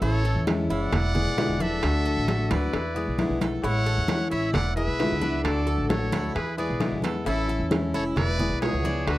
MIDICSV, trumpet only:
0, 0, Header, 1, 2, 480
1, 0, Start_track
1, 0, Tempo, 452489
1, 21, Time_signature, 4, 2, 24, 8
1, 9738, End_track
2, 0, Start_track
2, 0, Title_t, "Trumpet"
2, 0, Program_c, 0, 56
2, 22, Note_on_c, 0, 69, 101
2, 468, Note_off_c, 0, 69, 0
2, 764, Note_on_c, 0, 74, 101
2, 1716, Note_on_c, 0, 69, 93
2, 1732, Note_off_c, 0, 74, 0
2, 2677, Note_on_c, 0, 71, 78
2, 2692, Note_off_c, 0, 69, 0
2, 3628, Note_off_c, 0, 71, 0
2, 3850, Note_on_c, 0, 73, 96
2, 4533, Note_off_c, 0, 73, 0
2, 4567, Note_on_c, 0, 73, 81
2, 4796, Note_off_c, 0, 73, 0
2, 4803, Note_on_c, 0, 74, 83
2, 5034, Note_off_c, 0, 74, 0
2, 5042, Note_on_c, 0, 71, 91
2, 5729, Note_off_c, 0, 71, 0
2, 5764, Note_on_c, 0, 69, 86
2, 6218, Note_off_c, 0, 69, 0
2, 6243, Note_on_c, 0, 69, 77
2, 6698, Note_off_c, 0, 69, 0
2, 6731, Note_on_c, 0, 68, 70
2, 6959, Note_off_c, 0, 68, 0
2, 6973, Note_on_c, 0, 71, 64
2, 7423, Note_off_c, 0, 71, 0
2, 7693, Note_on_c, 0, 64, 97
2, 8143, Note_off_c, 0, 64, 0
2, 8425, Note_on_c, 0, 69, 87
2, 8532, Note_off_c, 0, 69, 0
2, 8664, Note_on_c, 0, 71, 88
2, 9109, Note_off_c, 0, 71, 0
2, 9155, Note_on_c, 0, 68, 83
2, 9627, Note_on_c, 0, 66, 90
2, 9643, Note_off_c, 0, 68, 0
2, 9738, Note_off_c, 0, 66, 0
2, 9738, End_track
0, 0, End_of_file